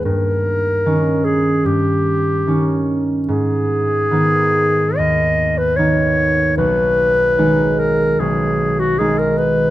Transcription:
<<
  \new Staff \with { instrumentName = "Clarinet" } { \time 4/4 \key gis \minor \tempo 4 = 74 ais'4. gis'8 g'4.~ g'16 r16 | gis'2 dis''8. b'16 cis''4 | b'4. ais'8 gis'8. fis'16 gis'16 ais'16 b'8 | }
  \new Staff \with { instrumentName = "Harp" } { \clef bass \time 4/4 \key gis \minor <g, dis'>4 <dis cis' dis'>4 g,4 <dis cis' dis'>4 | gis,4 <dis b dis'>4 dis,4 <dis b dis'>4 | b,,4 <dis gis dis'>4 b,,4 <dis gis dis'>4 | }
>>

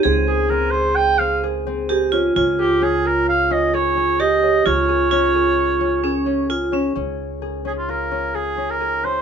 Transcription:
<<
  \new Staff \with { instrumentName = "Oboe" } { \time 5/4 \key des \lydian \tempo 4 = 130 r8 aes'8 bes'8 c''8 g''8 f''8 r2 | r8 g'8 aes'8 bes'8 f''8 ees''8 des''4 ees''4 | des''1 r4 | r4. aes'16 f'16 bes'4 aes'8. bes'8. c''8 | }
  \new Staff \with { instrumentName = "Vibraphone" } { \time 5/4 \key des \lydian aes'1 g'8 f'8 | f'1 g'4 | f'4 f'2 des'4 f'8 des'8 | r1 r4 | }
  \new Staff \with { instrumentName = "Harp" } { \time 5/4 \key des \lydian c'8 aes'8 c'8 aes'4 c'8 aes'8 c'8 aes'8 des'8 | des'8 aes'8 des'8 aes'4 des'8 aes'8 des'8 aes'8 des'8 | des'8 aes'8 des'8 aes'4 des'8 aes'8 des'8 aes'8 des'8 | des'4 aes'8 des'8 f'8 des'8 aes'8 des'8 aes'8 des'8 | }
  \new Staff \with { instrumentName = "Upright bass" } { \clef bass \time 5/4 \key des \lydian des,1~ des,4 | des,1~ des,4 | des,1~ des,4 | des,1~ des,4 | }
>>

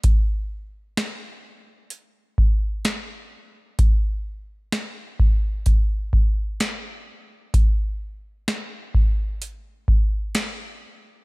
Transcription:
\new DrumStaff \with { instrumentName = "Drums" } \drummode { \time 4/4 \tempo 4 = 64 <hh bd>4 <hh sn>4 hh8 bd8 <hh sn>4 | <hh bd>4 <hh sn>8 bd8 <hh bd>8 bd8 <hh sn>4 | <hh bd>4 <hh sn>8 bd8 hh8 bd8 <hh sn>4 | }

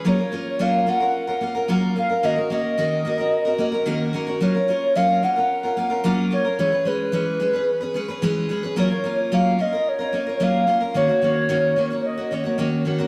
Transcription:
<<
  \new Staff \with { instrumentName = "Soft synth lead" } { \time 4/4 \key ges \major \tempo 4 = 110 des''4 f''8 ges''4. r8 f''8 | ees''8 ees''2. r8 | des''4 f''8 ges''4. r8 des''8 | cis''8 b'2. r8 |
des''4 f''8 ees''8 des''4 f''4 | des''8 des''4. ees''8 des''4 r8 | }
  \new Staff \with { instrumentName = "Steel-string acoustic guitar" } { \time 4/4 \key ges \major <ges bes des' f' bes'>16 <des' f' bes'>16 <bes des' f' bes'>8 <ges bes des' f' bes'>8 <bes des' f' bes'>16 <des' f' bes'>8 <des' f' bes'>16 <bes des' f' bes'>16 <des' f' bes'>16 <ges bes des' f' bes'>8 <bes des' f' bes'>16 <des' f' bes'>16 | <ees bes des' ges' bes'>16 <des' ges' bes'>16 <bes des' ges' bes'>8 <ees bes des' ges' bes'>8 <bes des' ges' bes'>16 <des' ges' bes'>8 <des' ges' bes'>16 <bes des' ges' bes'>16 <des' ges' bes'>16 <ees bes des' ges' bes'>8 <bes des' ges' bes'>16 <des' ges' bes'>16 | <ges bes des' f' bes'>16 <des' f' bes'>16 <bes des' f' bes'>8 <ges bes des' f' bes'>8 <bes des' f' bes'>16 <des' f' bes'>8 <des' f' bes'>16 <bes des' f' bes'>16 <des' f' bes'>16 <ges bes des' f' bes'>8 <bes des' f' bes'>16 <des' f' bes'>16 | <e gis cis' gis' b'>16 <cis' gis' b'>16 <gis cis' gis' b'>8 <e gis cis' gis' b'>8 <gis cis' gis' b'>16 <cis' gis' b'>8 <cis' gis' b'>16 <gis cis' gis' b'>16 <cis' gis' b'>16 <e gis cis' gis' b'>8 <gis cis' gis' b'>16 <cis' gis' b'>16 |
<ges bes des' f' bes'>16 <des' f' bes'>16 <bes des' f' bes'>8 <ges bes des' f' bes'>8 <bes des' f' bes'>16 <des' f' bes'>8 <des' f' bes'>16 <bes des' f' bes'>16 <des' f' bes'>16 <ges bes des' f' bes'>8 <bes des' f' bes'>16 <des' f' bes'>16 | <ees bes des' ges'>16 <bes des' ges'>16 <ees bes des' ges'>8 <ees bes des' ges'>8 <ees bes des' ges'>16 <bes des' ges'>8 <bes des' ges'>16 <ees bes des' ges'>16 <bes des' ges'>16 <ees bes des' ges'>8 <ees bes des' ges'>16 <bes des' ges'>16 | }
>>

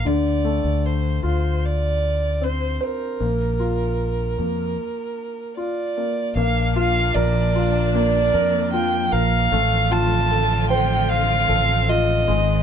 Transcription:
<<
  \new Staff \with { instrumentName = "Violin" } { \time 4/4 \key bes \major \tempo 4 = 76 d''4 c''8 c''8 d''4 c''8 bes'8~ | bes'2. d''4 | f''8 f''8 d''4 d''4 g''8 f''8~ | f''8 a''4 g''8 f''4 ees''4 | }
  \new Staff \with { instrumentName = "Grand piano" } { \time 4/4 \key bes \major d8 a4 f'4. c'8 c''8 | bes8 f'4 bes4. f'8 bes8 | bes8 f'8 bes'8 f'8 bes8 bes'8 f'8 bes'8 | a8 f'8 a'8 c''8 f''8 a'8 f'8 aes8 | }
  \new Staff \with { instrumentName = "String section" } { \time 4/4 \key bes \major r1 | r1 | <f bes d'>1 | <d a c' f'>2.~ <d a c' f'>8 <ees aes>8 | }
  \new Staff \with { instrumentName = "Fretless electric bass" } { \clef bass \time 4/4 \key bes \major d,8. d,8. d,2 r8 | bes,,4. f,8 r2 | bes,,4 bes,,4. f,4 bes,,8 | a,,2~ a,,8 a,,4 aes,,8 | }
>>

